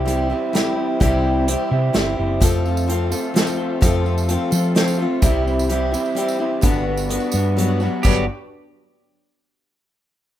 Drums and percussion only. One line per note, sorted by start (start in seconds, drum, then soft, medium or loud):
0.08 closed hi-hat medium
0.55 snare medium
0.55 closed hi-hat medium
1.01 kick loud
1.01 closed hi-hat medium
1.48 closed hi-hat medium
1.94 snare medium
1.94 closed hi-hat medium
2.42 kick loud
2.42 closed hi-hat medium
2.42 tambourine medium
2.65 tambourine soft
2.77 tambourine medium
2.90 closed hi-hat medium
3.12 tambourine medium
3.24 tambourine soft
3.36 snare medium
3.36 closed hi-hat medium
3.47 tambourine medium
3.82 kick loud
3.82 closed hi-hat medium
3.82 tambourine medium
4.06 tambourine soft
4.18 tambourine medium
4.29 closed hi-hat medium
4.52 tambourine loud
4.76 snare medium
4.76 closed hi-hat medium
4.88 tambourine medium
5.22 kick loud
5.22 closed hi-hat medium
5.22 tambourine loud
5.48 tambourine soft
5.59 tambourine medium
5.70 closed hi-hat medium
5.94 tambourine loud
6.05 tambourine soft
6.17 closed hi-hat medium
6.28 tambourine medium
6.62 kick loud
6.62 closed hi-hat medium
6.62 tambourine medium
6.74 tambourine soft
6.97 tambourine medium
7.09 closed hi-hat medium
7.09 tambourine soft
7.20 tambourine soft
7.32 tambourine loud
7.58 closed hi-hat medium
7.80 tambourine soft
8.03 kick loud
8.03 crash medium
8.03 tambourine medium